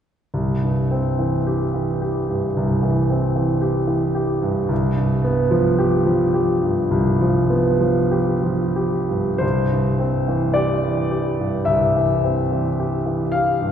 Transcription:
0.34 2.52 C2 soft
0.62 1.08 G2 soft
0.91 1.36 C4 soft
1.19 1.63 E3 soft
1.47 1.90 G4 soft
1.74 2.18 E3 soft
2.02 2.45 G4 soft
2.29 2.73 G2 soft
2.57 4.67 C2 soft
2.83 3.26 E3 soft
3.10 3.52 C4 soft
3.36 3.78 E3 soft
3.61 4.05 G4 soft
3.87 4.31 E3 soft
4.15 4.59 G4 soft
4.42 4.70 G2 soft
4.69 6.87 C2 soft
4.97 5.41 G2 soft
5.24 5.69 B3 soft
5.51 5.96 F3 soft
5.79 6.24 G4 soft
6.06 6.51 F3 soft
6.34 6.80 G4 soft
6.63 7.09 G2 soft
6.91 9.38 C2 soft
7.21 7.69 F3 soft
7.50 8.00 B3 soft
7.80 8.31 F3 soft
8.11 8.64 G4 soft
8.43 8.97 F3 soft
8.76 9.29 G4 soft
9.09 9.41 G2 soft
9.38 11.64 C2 soft
9.38 10.54 C5 medium
9.71 10.17 G2 soft
9.99 10.44 C4 soft
10.28 10.72 E3 soft
10.54 11.00 G4 soft
10.54 11.67 D5 medium
10.83 11.28 E3 soft
11.11 11.57 G4 soft
11.39 11.85 G2 soft
11.65 13.72 C2 soft
11.65 13.32 E5 medium
11.96 12.41 E3 soft
12.24 12.68 C4 soft
12.52 12.96 E3 soft
12.79 13.23 G4 soft
13.06 13.50 E3 soft
13.32 13.72 G4 soft
13.32 13.72 F5 medium
13.61 13.72 G2 soft

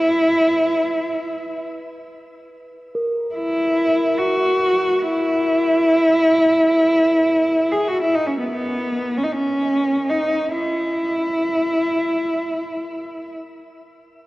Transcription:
0.00 1.63 E4 medium
0.00 4.09 B4 medium
2.95 11.49 A#4 soft
3.35 4.20 E4 medium
4.18 5.04 F#4 medium
5.03 7.73 E4 medium
7.72 7.89 G#4 medium
7.88 8.01 F#4 medium
8.02 8.16 E4 medium
8.15 8.28 D#4 medium
8.27 8.37 C#4 medium
8.40 8.51 B3 medium
8.51 9.19 B3 medium
9.17 9.25 C#4 medium
9.24 9.34 D#4 medium
9.32 10.11 C#4 medium
10.09 10.53 D#4 medium
10.51 13.31 E4 medium

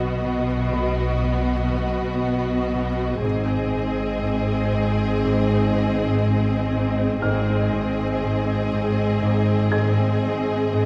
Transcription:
0.00 3.19 B1 soft
0.00 0.23 B2 soft
0.00 3.19 B2 soft
0.00 2.11 B3 soft
0.00 3.20 B3 soft
0.00 3.19 F#4 soft
0.00 3.20 D#5 soft
0.24 0.72 B2 soft
0.72 1.22 B2 soft
0.72 3.69 B5 soft
1.24 1.72 B2 medium
1.73 2.73 B2 soft
2.23 3.28 B3 soft
2.74 3.28 B2 soft
3.23 7.21 G#1 soft
3.23 7.21 G#2 soft
3.23 3.72 G#2 medium
3.23 7.18 C4 soft
3.23 7.21 G#4 soft
3.23 7.18 D#5 soft
3.74 4.23 G#2 soft
4.24 4.73 G#2 soft
4.74 5.23 G#2 soft
5.24 5.73 G#2 medium
5.74 6.72 G#2 soft
6.24 10.14 G#3 soft
6.74 7.22 G#2 soft
7.22 10.86 G#1 soft
7.22 10.86 G#2 soft
7.22 7.71 G#2 medium
7.22 10.86 C4 soft
7.22 10.86 G#4 soft
7.22 10.86 D#5 soft
7.22 10.18 F6 soft
7.73 8.21 G#2 soft
8.23 8.71 G#2 soft
8.73 9.21 G#2 soft
9.22 9.71 G#2 medium
9.72 10.72 G#2 soft
9.72 10.86 G#6 soft
10.23 10.86 G#3 soft
10.73 10.86 G#2 soft

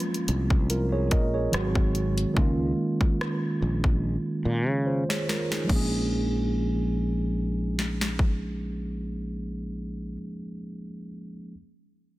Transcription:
0.00 1.48 F3 medium
0.00 1.49 G#3 medium
0.00 1.50 A#3 medium
0.00 1.47 C#4 medium
0.00 0.70 F4 medium
0.00 closed hi-hat medium
0.14 closed hi-hat medium
0.28 1.12 C2 medium
0.28 closed hi-hat medium
0.50 kick medium
0.70 0.91 F4 medium
0.70 0.91 A#4 medium
0.70 closed hi-hat medium
0.92 1.11 G#4 medium
0.92 1.10 C#5 medium
1.11 1.47 A#1 medium
1.11 1.33 A#4 medium
1.11 1.33 D#5 medium
1.11 kick loud
1.11 closed hi-hat medium
1.34 1.74 G#4 medium
1.34 1.73 C#5 medium
1.52 2.24 G#1 medium
1.52 2.33 D#3 medium
1.52 2.36 F#3 medium
1.52 2.34 G#3 medium
1.52 2.37 C4 medium
1.52 cross-stick loud
1.52 closed hi-hat medium
1.75 kick medium
1.95 closed hi-hat medium
2.18 closed hi-hat soft
2.34 2.72 C#2 loud
2.34 4.81 D#3 medium
2.34 4.82 G#3 medium
2.34 4.82 A#3 medium
2.34 kick loud
2.38 4.83 C#4 medium
2.38 4.42 F4 medium
3.01 kick medium
3.21 cross-stick loud
3.62 4.16 A#1 medium
3.84 kick medium
4.45 4.68 A#2 medium
4.68 5.03 C#3 medium
4.86 5.08 F4 soft
4.86 5.08 C5 medium
5.09 5.27 G#4 medium
5.09 5.27 C#5 medium
5.09 snare medium
5.28 5.50 F4 medium
5.28 5.49 A#4 medium
5.28 snare medium
5.51 5.90 D#4 soft
5.51 5.74 G#4 medium
5.51 snare medium
5.64 10.10 F3 medium
5.64 10.13 G#3 medium
5.69 10.16 A#1 medium
5.69 10.16 A#3 medium
5.69 10.19 C#4 medium
5.69 kick medium
5.69 crash medium
5.75 10.21 G#4 medium
7.79 snare medium
8.01 snare medium
8.19 kick medium

